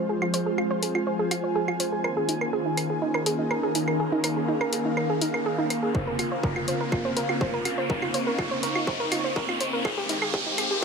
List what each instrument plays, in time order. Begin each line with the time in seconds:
Already playing: analog synth pad F3 G#3 C4 G#4, ambient pad F4 C5 G#5, riser
0.09 synth arpeggio sound G#4
0.22 synth arpeggio sound F4, claves
0.34 synth arpeggio sound C5, open hi-hat
0.46 synth arpeggio sound G#4
0.58 synth arpeggio sound F4, claves
0.71 synth arpeggio sound C5
0.83 synth arpeggio sound G#4, open hi-hat
0.95 synth arpeggio sound F4, claves
1.07 synth arpeggio sound C5
1.19 synth arpeggio sound G#4
1.31 synth arpeggio sound F4, open hi-hat, claves
1.44 synth arpeggio sound C5
1.56 synth arpeggio sound G#4
1.68 synth arpeggio sound F4, claves
1.80 synth arpeggio sound C5, open hi-hat
1.93 synth arpeggio sound G#4
2.04 analog synth pad D#3 A#3 C#4 G#4, ambient pad D#4, synth arpeggio sound A#4, claves
2.17 synth arpeggio sound G#4
2.29 synth arpeggio sound D#4, open hi-hat
2.41 synth arpeggio sound A#4, claves
2.50 synth arpeggio sound G#4, ambient pad A#4
2.66 synth arpeggio sound D#4
2.77 synth arpeggio sound A#4, open hi-hat, claves
2.90 synth arpeggio sound G#4
3.02 synth arpeggio sound D#4
3.14 synth arpeggio sound A#4, claves
3.26 synth arpeggio sound G#4, open hi-hat
3.32 ambient pad F5
3.39 synth arpeggio sound D#4
3.51 synth arpeggio sound A#4, claves
3.63 synth arpeggio sound G#4
3.75 synth arpeggio sound D#4, open hi-hat
3.88 synth arpeggio sound A#4, claves
4.00 synth arpeggio sound G#4
4.12 synth arpeggio sound D#4
4.24 synth arpeggio sound A#4, open hi-hat, claves
4.37 synth arpeggio sound G#4
4.48 synth arpeggio sound D#4
4.61 synth arpeggio sound A#4, claves
4.73 synth arpeggio sound G#4, open hi-hat
4.85 synth arpeggio sound D#4
4.97 synth arpeggio sound A#4, claves
5.10 synth arpeggio sound G#4
5.21 synth arpeggio sound D#4, open hi-hat
5.34 synth arpeggio sound A#4, claves
5.46 synth arpeggio sound G#4
5.58 synth arpeggio sound D#4
5.70 synth arpeggio sound A#4, open hi-hat, claves
5.83 synth arpeggio sound G#4
5.95 analog synth pad C#3 C4 F4, synth arpeggio sound C5, kick
6.07 synth arpeggio sound A#4
6.19 synth arpeggio sound F4, open hi-hat, claves
6.32 synth arpeggio sound C5
6.43 synth arpeggio sound A#4, kick, mid tom
6.56 synth arpeggio sound F4, claves
6.68 synth arpeggio sound C5, open hi-hat
6.81 synth arpeggio sound A#4
6.92 synth arpeggio sound F4, kick, claves
7.05 synth arpeggio sound C5
7.17 synth arpeggio sound A#4, open hi-hat, mid tom
7.29 synth arpeggio sound F4, claves
7.41 synth arpeggio sound C5, kick
7.50 synth arpeggio sound A#4, ambient pad C#6
7.65 synth arpeggio sound F4, open hi-hat, claves
7.78 synth arpeggio sound C5
7.90 analog synth pad D#4, synth arpeggio sound A#4, kick, mid tom
8.02 synth arpeggio sound F4, claves
8.14 synth arpeggio sound C5, open hi-hat
8.27 synth arpeggio sound A#4
8.39 synth arpeggio sound F4, kick, claves
8.51 synth arpeggio sound C5
8.63 synth arpeggio sound A#4, open hi-hat, mid tom
8.76 synth arpeggio sound F4, claves
8.87 synth arpeggio sound C5, kick
9.00 synth arpeggio sound A#4
9.12 synth arpeggio sound F4, open hi-hat, claves
9.24 synth arpeggio sound C5
9.36 synth arpeggio sound A#4, kick, mid tom
9.49 synth arpeggio sound F4, claves
9.60 synth arpeggio sound C5, open hi-hat
9.73 synth arpeggio sound A#4
9.85 analog synth pad D#3 G#3 G4, ambient pad G#3, synth arpeggio sound G#4, kick, claves
9.98 synth arpeggio sound G4
10.09 synth arpeggio sound D#4, ambient pad C6, open hi-hat, mid tom
10.22 synth arpeggio sound G#4, claves
10.28 ambient pad D#5
10.34 synth arpeggio sound G4, kick
10.46 synth arpeggio sound D#4
10.58 synth arpeggio sound G#4, open hi-hat, claves
10.71 synth arpeggio sound G4, ambient pad A#5